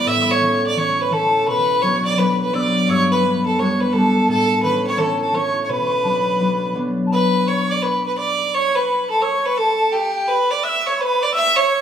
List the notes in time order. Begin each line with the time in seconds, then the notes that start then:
Already playing: G2 E3 G3 A3 B3 C#4
0.06 A2 E5 E6
0.21 B5
0.30 C#5 C#6
0.41 E3 A3 C#4
0.65 D5 D6
0.77 E3 A3 C#4 C#5 C#6
1.00 B4 B5
1.12 E3 A3 C#4 A4 A5
1.47 B2 B4 B5 C#6
1.82 F#3 B3 D4 C#5 C#6
2.05 D5 D6
2.17 F#3 B3 D4 B4 B5
2.42 B4
2.53 F#3 B3 D4 D5 E6
2.59 D6
2.89 G2 C#5 E6
2.94 C#6
3.11 B4 B5
3.21 G3 B3
3.26 D4
3.46 A4 A5
3.59 G3 B3 D4 C#5 C#6
3.81 B4 B5
3.93 G3 B3 D4 A4 A5
4.29 A2 A4 A5
4.63 E3 A3 C#4 B4 B5
4.87 C#5 C#6
4.98 E3 A3 C#4 A4 B5
5.03 A5
5.22 A4 A5
5.34 E3 A3 C#4 C#5 C#6
5.62 C#5 C#6
5.69 B2 B4 B5
5.86 C#6
5.90 B5
6.03 F#3 B3 D4 A5
6.07 B5
6.40 F#3 B3 D4
6.75 F#3 B3 D4
7.06 A5
7.11 B4 B5
7.46 C#5 C#6
7.68 D5 D6
7.82 B4 B5 C#6
8.05 B4 B5
8.17 D5 D6
8.53 C#5 C#6
8.75 B4 B5
9.09 A4 A5
9.21 C#5 C#6 E6
9.46 B4
9.57 A4 A5
9.93 G4 G5
10.28 B4 B5
10.50 D5 D6
10.63 E5 F#6
10.68 E6
10.85 C#5 C#6
10.98 B4 B5
11.20 D5 D6
11.32 E5 E6
11.55 C#5 C#6